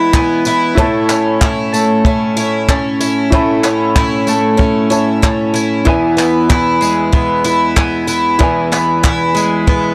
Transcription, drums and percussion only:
0.14 kick loud
0.14 clap loud
0.45 tambourine medium
0.78 kick loud
1.09 clap loud
1.09 tambourine medium
1.41 kick loud
1.41 clap loud
1.74 tambourine medium
2.05 kick loud
2.37 tambourine medium
2.69 kick loud
2.69 clap loud
3.01 tambourine medium
3.32 kick loud
3.64 clap medium
3.64 tambourine medium
3.96 kick loud
3.96 clap loud
4.28 tambourine medium
4.59 kick loud
4.92 tambourine medium
5.23 kick loud
5.23 clap loud
5.56 tambourine medium
5.87 kick loud
6.19 clap medium
6.19 tambourine medium
6.50 kick loud
6.50 clap loud
6.82 tambourine medium
7.13 kick loud
7.44 tambourine medium
7.77 kick medium
7.77 clap loud
8.08 tambourine medium
8.41 kick loud
8.72 clap medium
8.72 tambourine medium
9.04 kick loud
9.04 clap loud
9.37 tambourine medium
9.68 kick loud

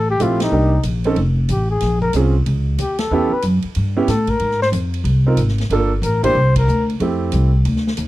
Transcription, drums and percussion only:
0.20 hi-hat pedal soft
0.20 ride medium
0.40 snare medium
0.40 ride medium
0.83 hi-hat pedal medium
0.83 ride medium
1.04 ride soft
1.16 ride soft
1.49 hi-hat pedal soft
1.49 ride medium
1.80 snare soft
1.80 ride medium
2.02 kick soft
2.13 hi-hat pedal medium
2.13 ride medium
2.46 ride medium
2.78 hi-hat pedal soft
2.78 ride medium
2.98 snare medium
2.98 ride medium
3.42 hi-hat pedal medium
3.42 ride medium
3.62 ride soft
3.75 ride medium
4.08 snare soft
4.08 hi-hat pedal medium
4.08 ride medium
4.27 kick medium
4.27 ride soft
4.39 ride medium
4.51 snare soft
4.62 snare soft
4.73 hi-hat pedal soft
4.73 ride medium
4.94 ride soft
5.05 ride medium
5.37 hi-hat pedal soft
5.37 ride medium
5.48 snare soft
5.58 snare soft
5.58 ride soft
5.70 ride medium
6.03 hi-hat pedal medium
6.03 ride medium
6.24 kick soft
6.24 ride medium
6.56 kick medium
6.56 ride medium
6.68 hi-hat pedal soft
6.90 ride soft
7.00 ride medium
7.32 hi-hat pedal medium
7.32 ride medium
7.65 ride medium
7.76 snare soft
7.87 snare soft
7.97 hi-hat pedal medium
7.97 ride medium

